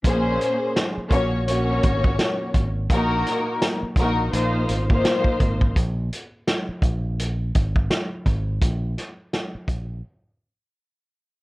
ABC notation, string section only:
X:1
M:4/4
L:1/16
Q:"Swing 16ths" 1/4=84
K:Abmix
V:1 name="String section"
[B,,B,DAc]4- [B,,B,DAc] z [B,,B,DGd]2 [B,,B,DGd]6 z2 | [B,,B,EGB]4- [B,,B,EGB] z [B,,B,EGB]2 [B,,B,EFc]3 [B,,B,EFc]4- [B,,B,EFc] | z16 | z16 |]